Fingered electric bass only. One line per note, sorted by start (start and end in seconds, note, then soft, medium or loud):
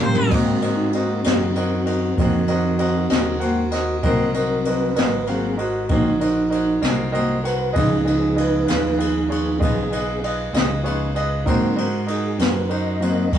0.00 0.29 A#2 loud
0.31 1.22 G#2 medium
1.26 2.16 F#2 medium
2.17 3.08 F2 medium
3.11 4.01 D#2 medium
4.03 4.94 C2 medium
4.97 5.87 G#1 loud
5.89 6.80 A#1 medium
6.82 7.72 C2 medium
7.76 8.66 C#2 medium
8.68 9.58 D#2 medium
9.61 10.51 B1 medium
10.53 11.44 C#2 medium
11.46 12.36 G#2 medium
12.39 13.29 F#2 medium
13.32 13.38 G#2 medium